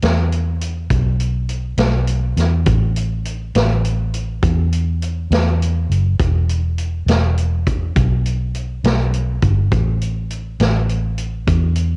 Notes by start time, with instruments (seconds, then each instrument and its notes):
0.02 fingered electric bass E2, snare, closed hi-hat
0.32 closed hi-hat
0.61 closed hi-hat
0.90 fingered electric bass B1, kick, closed hi-hat
1.20 closed hi-hat
1.49 closed hi-hat
1.77 fingered electric bass B1, snare, closed hi-hat
2.07 closed hi-hat
2.37 fingered electric bass E2, snare, closed hi-hat
2.66 fingered electric bass A1, kick, closed hi-hat
2.96 closed hi-hat
3.25 closed hi-hat
3.55 fingered electric bass A1, snare, closed hi-hat
3.84 closed hi-hat
4.14 closed hi-hat
4.43 fingered electric bass E2, kick, closed hi-hat
4.73 closed hi-hat
5.02 closed hi-hat
5.31 fingered electric bass E2, snare, closed hi-hat
5.62 closed hi-hat
5.90 fingered electric bass F#1, closed hi-hat
6.20 fingered electric bass E1, kick, closed hi-hat
6.49 closed hi-hat
6.78 closed hi-hat
7.06 fingered electric bass E1, snare, closed hi-hat
7.38 closed hi-hat
7.67 kick, closed hi-hat
7.96 fingered electric bass B1, kick, closed hi-hat
8.25 closed hi-hat
8.54 closed hi-hat
8.84 fingered electric bass B1, snare, closed hi-hat
9.13 closed hi-hat
9.42 fingered electric bass G1, kick, closed hi-hat
9.71 fingered electric bass A1, kick, closed hi-hat
10.02 closed hi-hat
10.30 closed hi-hat
10.60 fingered electric bass A1, snare, closed hi-hat
10.89 closed hi-hat
11.18 closed hi-hat
11.47 fingered electric bass E2, kick, closed hi-hat
11.76 closed hi-hat